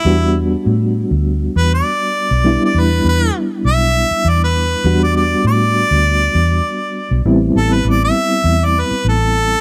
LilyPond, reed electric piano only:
\new Staff \with { instrumentName = "Reed electric piano" } { \time 4/4 \key e \minor \tempo 4 = 100 <g b d' fis'>1 | <g b d' e'>1 | <g b d' fis'>1 | <g b c' e'>1 | }